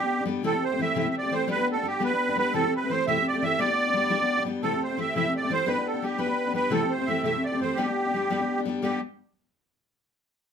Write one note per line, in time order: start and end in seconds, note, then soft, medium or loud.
0.00 0.20 B3 medium
0.00 0.19 D4 soft
0.00 0.24 G4 loud
0.00 0.17 G4 medium
0.18 0.25 B3 soft
0.18 0.27 D4 medium
0.18 0.27 G4 medium
0.25 0.43 G3 medium
0.25 0.44 B3 medium
0.25 0.44 D4 medium
0.25 0.44 G4 medium
0.43 0.53 C3 medium
0.43 0.54 E3 loud
0.43 0.53 A3 loud
0.43 0.54 C4 medium
0.43 0.51 G4 medium
0.43 0.65 A4 loud
0.52 0.72 A3 soft
0.52 0.72 C4 soft
0.52 0.70 G4 medium
0.64 0.81 C5 medium
0.71 0.80 A3 medium
0.71 0.80 C4 soft
0.71 0.80 G4 medium
0.79 0.95 E3 medium
0.79 0.96 A3 medium
0.79 0.95 C4 medium
0.79 0.97 G4 medium
0.79 0.97 E5 loud
0.95 1.05 C3 medium
0.95 1.06 E3 medium
0.95 1.05 A3 medium
0.95 1.06 C4 medium
0.95 1.03 G4 medium
0.95 1.08 E5 loud
1.04 1.24 A3 soft
1.04 1.25 C4 soft
1.04 1.22 G4 soft
1.10 1.15 E5 medium
1.18 1.34 D5 loud
1.23 1.33 A3 medium
1.23 1.31 C4 soft
1.23 1.32 G4 medium
1.31 1.47 E3 medium
1.31 1.49 A3 medium
1.31 1.48 C4 medium
1.31 1.48 G4 medium
1.31 1.48 C5 loud
1.48 1.58 G3 medium
1.48 1.58 B3 medium
1.48 1.58 D4 medium
1.48 1.56 G4 medium
1.48 1.68 B4 loud
1.57 1.77 B3 soft
1.57 1.75 D4 soft
1.57 1.73 G4 medium
1.72 1.84 G4 medium
1.72 1.87 A4 medium
1.76 1.84 B3 soft
1.76 1.84 D4 medium
1.83 1.99 G3 medium
1.83 1.99 B3 medium
1.83 2.00 D4 medium
1.83 2.01 G4 medium
1.88 2.03 G4 medium
2.00 2.10 G3 medium
2.00 2.11 B3 medium
2.00 2.11 D4 medium
2.00 2.10 G4 medium
2.04 2.37 B4 loud
2.11 2.28 D4 soft
2.11 2.27 G4 medium
2.28 2.36 B3 soft
2.28 2.37 D4 medium
2.28 2.37 G4 medium
2.36 2.53 G3 medium
2.36 2.53 B3 medium
2.36 2.54 D4 medium
2.36 2.54 G4 medium
2.36 2.53 B4 loud
2.53 2.63 C3 medium
2.53 2.63 E3 medium
2.53 2.64 A3 medium
2.53 2.63 C4 medium
2.53 2.62 G4 loud
2.53 2.74 A4 loud
2.64 2.82 A3 soft
2.64 2.83 C4 soft
2.64 2.80 G4 medium
2.76 2.91 B4 medium
2.82 2.90 A3 soft
2.82 2.90 C4 soft
2.82 2.90 G4 medium
2.90 3.06 E3 medium
2.90 3.07 A3 medium
2.90 3.07 C4 medium
2.90 3.08 G4 medium
2.90 3.05 C5 loud
3.07 3.16 C3 medium
3.07 3.16 E3 medium
3.07 3.17 A3 medium
3.07 3.17 C4 medium
3.07 3.17 G4 medium
3.07 3.26 E5 loud
3.20 3.35 C4 soft
3.28 3.43 D5 loud
3.34 3.42 A3 medium
3.34 3.42 C4 soft
3.34 3.42 G4 medium
3.42 3.58 E3 medium
3.42 3.60 A3 medium
3.42 3.59 C4 medium
3.42 3.59 G4 medium
3.42 3.60 E5 loud
3.59 3.68 G3 medium
3.59 3.69 B3 loud
3.59 3.69 D4 loud
3.59 3.68 G4 loud
3.59 4.43 D5 loud
3.69 3.87 B3 soft
3.69 3.87 D4 soft
3.69 3.86 G4 medium
3.87 3.93 B3 soft
3.87 3.95 D4 medium
3.87 3.95 G4 medium
3.94 4.09 G3 medium
3.94 4.09 B3 medium
3.94 4.10 D4 medium
3.94 4.10 G4 medium
4.10 4.20 G3 medium
4.10 4.20 B3 medium
4.10 4.19 D4 medium
4.10 4.18 G4 loud
4.21 4.39 B3 soft
4.21 4.38 D4 medium
4.37 4.45 B3 medium
4.37 4.46 D4 medium
4.37 4.46 G4 medium
4.45 4.62 G3 medium
4.45 4.63 B3 medium
4.45 4.63 D4 medium
4.45 4.63 G4 medium
4.63 4.72 C3 medium
4.63 4.73 E3 medium
4.63 4.72 A3 medium
4.63 4.73 C4 medium
4.63 4.70 G4 medium
4.63 4.83 A4 loud
4.72 4.90 A3 medium
4.72 4.91 C4 soft
4.72 4.88 G4 medium
4.83 5.00 C5 medium
4.89 4.98 A3 soft
4.89 4.97 C4 soft
4.89 4.98 G4 soft
4.97 5.15 E3 medium
4.97 5.15 A3 medium
4.97 5.15 C4 medium
4.97 5.16 G4 medium
4.97 5.14 E5 loud
5.15 5.25 C3 medium
5.15 5.25 E3 medium
5.15 5.25 A3 medium
5.15 5.25 C4 medium
5.15 5.23 G4 medium
5.15 5.34 E5 loud
5.25 5.43 A3 medium
5.25 5.44 C4 soft
5.25 5.41 G4 medium
5.36 5.52 D5 medium
5.42 5.50 A3 medium
5.42 5.50 C4 soft
5.42 5.51 G4 medium
5.50 5.66 E3 medium
5.50 5.67 A3 medium
5.50 5.66 C4 medium
5.50 5.66 G4 medium
5.50 5.69 C5 loud
5.66 5.77 G3 medium
5.66 5.77 B3 medium
5.66 5.76 D4 medium
5.66 5.75 G4 medium
5.66 5.88 B4 loud
5.76 5.95 B3 soft
5.76 5.94 D4 medium
5.76 5.93 G4 medium
5.86 6.04 A4 medium
5.94 6.02 B3 soft
5.94 6.03 D4 medium
5.94 6.03 G4 medium
6.02 6.17 G3 medium
6.02 6.18 B3 medium
6.02 6.17 D4 medium
6.02 6.21 G4 medium
6.02 6.19 G4 medium
6.18 6.29 G3 medium
6.18 6.28 B3 medium
6.18 6.27 D4 medium
6.18 6.26 G4 medium
6.18 6.53 B4 loud
6.27 6.47 B3 soft
6.27 6.46 D4 soft
6.27 6.44 G4 medium
6.45 6.53 B3 soft
6.45 6.54 D4 medium
6.45 6.55 G4 medium
6.53 6.70 G3 medium
6.53 6.71 B3 medium
6.53 6.71 D4 medium
6.53 6.71 G4 medium
6.53 6.73 B4 loud
6.70 6.81 C3 medium
6.70 6.81 E3 medium
6.70 6.82 A3 loud
6.70 6.82 C4 loud
6.70 6.79 G4 loud
6.70 6.92 A4 loud
6.80 6.99 A3 soft
6.80 7.00 C4 soft
6.80 6.97 G4 medium
6.91 7.08 C5 medium
6.98 7.08 A3 medium
6.98 7.07 C4 soft
6.98 7.07 G4 medium
7.06 7.23 E3 medium
7.06 7.24 A3 medium
7.06 7.23 C4 medium
7.06 7.22 E5 loud
7.10 7.25 G4 medium
7.23 7.34 C3 medium
7.23 7.34 E3 medium
7.23 7.34 A3 medium
7.23 7.34 C4 medium
7.23 7.32 G4 medium
7.23 7.44 E5 loud
7.35 7.52 A3 medium
7.35 7.53 C4 soft
7.44 7.60 D5 medium
7.52 7.61 A3 soft
7.52 7.60 C4 medium
7.52 7.61 G4 medium
7.61 7.77 E3 medium
7.61 7.78 A3 medium
7.61 7.77 C4 medium
7.61 7.78 G4 medium
7.61 7.78 C5 medium
7.75 7.87 G3 medium
7.75 7.87 B3 medium
7.75 7.87 D4 medium
7.75 8.61 G4 medium
7.79 7.86 G4 medium
7.87 8.07 B3 soft
7.87 8.05 D4 medium
7.87 8.04 G4 medium
8.05 8.14 B3 soft
8.05 8.14 D4 medium
8.05 8.13 G4 medium
8.14 8.29 G3 medium
8.14 8.29 B3 medium
8.14 8.30 D4 medium
8.14 8.31 G4 medium
8.30 8.40 G3 medium
8.30 8.40 B3 loud
8.30 8.39 D4 medium
8.30 8.38 G4 medium
8.39 8.59 B3 medium
8.39 8.58 D4 medium
8.39 8.56 G4 medium
8.58 8.65 B3 medium
8.58 8.67 D4 medium
8.58 8.66 G4 medium
8.65 8.81 G3 medium
8.65 8.82 B3 medium
8.65 8.83 D4 medium
8.65 8.84 G4 medium
8.82 8.98 G3 medium
8.82 8.98 B3 medium
8.82 8.99 D4 loud
8.82 9.01 G4 medium
8.82 8.99 G4 loud